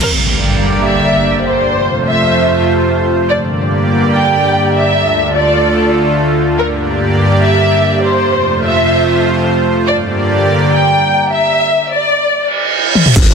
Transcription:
Already playing: ambient pad G4 E5 C6
0.01 supersaw synth G2 D3 A#3 G4 D5, violin section A#4, crash, impact
0.08 ambient pad A#5
0.15 ambient pad D5
0.83 violin section E5
1.45 violin section C5
1.65 supersaw synth F2 C3 A3 F4 C5, ambient pad F4
1.82 ambient pad C5
1.98 ambient pad A5
2.06 violin section E5
3.29 supersaw synth G2 D3 A#3 G4 D5, ambient pad G4, violin section D5
3.36 ambient pad D5
3.65 ambient pad A#5
4.12 violin section G5
4.74 violin section E5
4.94 supersaw synth D2 D3 A3 F4 A4, ambient pad F4
5.01 ambient pad A5
5.35 violin section D5
6.58 supersaw synth G2 A#3 G4 D5, ambient pad G4, violin section A#4
6.98 ambient pad A#5
7.41 violin section E5
8.02 violin section C5
8.23 supersaw synth F2 C3 A3 F4 C5, ambient pad F4
8.55 ambient pad C5
8.64 violin section E5
8.77 ambient pad A5
9.87 supersaw synth G2 D3 A#3 G4 D5, ambient pad G4, violin section D5
9.91 ambient pad D5
10.34 ambient pad A#5
10.69 violin section G5
11.31 violin section E5
11.93 violin section D5
12.34 reverse cymbal
12.95 high tom
13.06 mid tom
13.16 wobble bass G1, supersaw synth A#3, ambient pad G4, kick, closed hi-hat, crash, impact

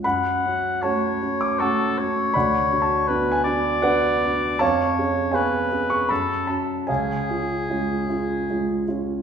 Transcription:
0.04 grand piano F#2 F#5 B5, oboe F#5
0.46 grand piano C#4 F#4
0.82 grand piano A3 C#4 F#4 C#5 F#5 A5, oboe C#5
1.22 grand piano C#4 F#4
1.41 grand piano D6
1.59 grand piano A3 C#4 F#4 F#5 A5 C#6, oboe A4
1.98 grand piano C#4 F#4, oboe C#5
2.34 grand piano D2 D5 F#5 B5
2.73 grand piano D4 F#4
2.82 grand piano A5
3.08 grand piano B3 D4 F#4, oboe B4
3.32 grand piano G#5
3.44 grand piano D4 F#4, oboe D5
3.82 grand piano B3 D4 F#4 B4 D5 F#5
4.25 grand piano D4 F#4
4.59 grand piano F2 C#5 F5 A5, oboe C#5
4.98 grand piano C#4 G#4
5.31 grand piano B3 C#4 G#4 C#5 F5 G#5, oboe B4
5.72 grand piano C#4 G#4
5.90 grand piano C#6
6.09 grand piano F#2 B5, oboe A4
6.47 grand piano C#4 F#4 A5
6.87 grand piano C#2 C#5 F5 G#5, oboe G#4
7.30 grand piano C#4 F4
7.70 grand piano G#3 C#4 F4
8.09 grand piano C#4 F4
8.50 grand piano G#3 C#4 F4
8.88 grand piano C#4 F4

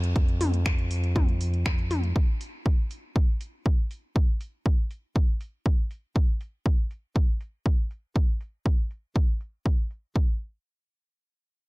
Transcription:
Already playing: analog synth bass F2
0.04 closed hi-hat
0.16 kick, closed hi-hat
0.29 closed hi-hat
0.41 open hi-hat, mid tom
0.54 closed hi-hat
0.66 finger snap, kick, closed hi-hat
0.79 closed hi-hat
0.91 open hi-hat
1.04 closed hi-hat
1.16 kick, closed hi-hat, mid tom
1.29 closed hi-hat
1.41 open hi-hat
1.54 closed hi-hat
1.66 finger snap, kick, closed hi-hat
1.79 closed hi-hat
1.91 open hi-hat, mid tom
2.04 closed hi-hat
2.16 kick
2.41 open hi-hat
2.66 kick
2.91 open hi-hat
3.16 kick
3.41 open hi-hat
3.66 kick
3.91 open hi-hat
4.16 kick
4.41 open hi-hat
4.66 kick
4.91 open hi-hat
5.16 kick
5.41 open hi-hat
5.66 kick
5.91 open hi-hat
6.16 kick
6.41 open hi-hat
6.66 kick
6.91 open hi-hat
7.16 kick
7.41 open hi-hat
7.66 kick
7.91 open hi-hat
8.16 kick
8.41 open hi-hat
8.66 kick
8.91 open hi-hat
9.16 kick
9.41 open hi-hat
9.66 kick
9.91 open hi-hat
10.16 kick

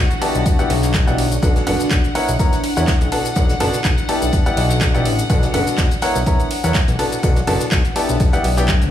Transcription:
Already playing: ambient pad D4, string section F#4 F#5
0.11 closed hi-hat, shaker
0.21 grand piano B3 E4 G4 D5 A5, closed hi-hat, open hi-hat, ride
0.35 analog synth bass B1, closed hi-hat, shaker
0.46 kick, closed hi-hat, shaker
0.59 grand piano B3 E4 G4 D5 F#5, closed hi-hat, shaker
0.70 analog synth bass B1, closed hi-hat, open hi-hat, ride
0.83 clap, closed hi-hat, shaker
0.94 kick, snare, clap, closed hi-hat, shaker
1.07 analog synth bass B1, grand piano B3 E4 G4 D5 F#5, closed hi-hat, shaker
1.18 closed hi-hat, open hi-hat, ride
1.32 closed hi-hat, shaker
1.42 analog synth bass B1, grand piano B2 D4 A4 B4 F#5, string section F#5, kick, closed hi-hat, shaker
1.56 snare, closed hi-hat, shaker
1.67 analog synth bass F#1, grand piano B2 D4 A4 B4 F#5, closed hi-hat, open hi-hat, ride
1.80 closed hi-hat, shaker
1.91 analog synth bass B1, kick, snare, clap, closed hi-hat, shaker
2.04 closed hi-hat, shaker
2.15 grand piano B3 E4 A#4 C#5 F#5, ambient pad E4, closed hi-hat, open hi-hat, ride
2.28 analog synth bass B1, closed hi-hat, shaker
2.39 grand piano B3 E4 A#4 C#5 A#5, kick, closed hi-hat, shaker
2.53 snare, closed hi-hat, shaker
2.64 closed hi-hat, open hi-hat, ride
2.76 analog synth bass E2, grand piano B3 E4 A#4 C#5 F#5, snare, closed hi-hat, shaker
2.88 kick, snare, clap, closed hi-hat, shaker
3.01 analog synth bass B1, closed hi-hat, shaker
3.12 grand piano B2 D4 A4 B4 A5, ambient pad D4, closed hi-hat, open hi-hat, ride
3.25 closed hi-hat, shaker
3.35 analog synth bass B1, grand piano B2 D4 A4 B4 F#5, ambient pad B4, kick, closed hi-hat, shaker
3.49 snare, closed hi-hat, shaker
3.60 analog synth bass F#1, grand piano B2 D4 A4 B4 A5, closed hi-hat, open hi-hat, ride
3.74 closed hi-hat, shaker
3.84 analog synth bass B1, kick, snare, clap, closed hi-hat, shaker
3.98 closed hi-hat, shaker
4.09 grand piano B3 E4 G4 D5 A5, closed hi-hat, open hi-hat, ride
4.22 analog synth bass B1, closed hi-hat, shaker
4.32 kick, closed hi-hat, shaker
4.46 grand piano B3 E4 G4 D5 F#5, closed hi-hat, shaker
4.57 analog synth bass B1, closed hi-hat, open hi-hat, ride
4.70 clap, closed hi-hat, shaker
4.81 kick, snare, clap, closed hi-hat, shaker
4.94 grand piano B3 E4 G4 D5 F#5, closed hi-hat, shaker
5.05 analog synth bass A1, closed hi-hat, open hi-hat, ride
5.19 closed hi-hat, shaker
5.30 analog synth bass B1, grand piano B2 D4 A4 B4 F#5, kick, closed hi-hat, shaker
5.43 snare, closed hi-hat, shaker
5.54 analog synth bass F#1, grand piano B2 D4 A4 B4 F#5, closed hi-hat, open hi-hat, ride
5.67 closed hi-hat, shaker
5.78 analog synth bass B1, kick, snare, clap, closed hi-hat, shaker
5.91 closed hi-hat, shaker
6.01 grand piano B3 E4 A#4 C#5 F#5, ambient pad E4, snare, closed hi-hat, open hi-hat, ride
6.15 analog synth bass B1, closed hi-hat, shaker
6.26 grand piano B3 E4 A#4 C#5 A#5, kick, closed hi-hat, shaker
6.40 closed hi-hat, shaker
6.50 closed hi-hat, open hi-hat, ride
6.64 analog synth bass E2, grand piano B3 E4 A#4 C#5 F#5, snare, closed hi-hat, shaker
6.74 kick, snare, clap, closed hi-hat, shaker
6.88 analog synth bass B1, closed hi-hat, shaker
6.99 grand piano B2 D4 A4 B4 A5, ambient pad D4, closed hi-hat, open hi-hat, ride
7.12 closed hi-hat, shaker
7.23 analog synth bass B1, grand piano B2 D4 A4 B4 F#5, ambient pad B4, kick, closed hi-hat, shaker
7.36 snare, closed hi-hat, shaker
7.47 analog synth bass F#1, grand piano B2 D4 A4 B4 A5, closed hi-hat, open hi-hat, ride
7.61 closed hi-hat, shaker
7.72 analog synth bass B1, kick, snare, clap, closed hi-hat, shaker
7.85 closed hi-hat, shaker
7.96 grand piano B3 E4 G4 D5 A5, closed hi-hat, open hi-hat, ride
8.09 analog synth bass B1, closed hi-hat, shaker
8.20 analog synth bass B1, kick, closed hi-hat, shaker
8.32 grand piano B3 E4 G4 D5 F#5, snare, closed hi-hat, shaker
8.44 analog synth bass B1, closed hi-hat, open hi-hat, ride
8.57 grand piano B3 E4 G4 D5 G5, clap, closed hi-hat, shaker
8.68 kick, snare, clap, closed hi-hat, shaker
8.82 analog synth bass D2, closed hi-hat, shaker

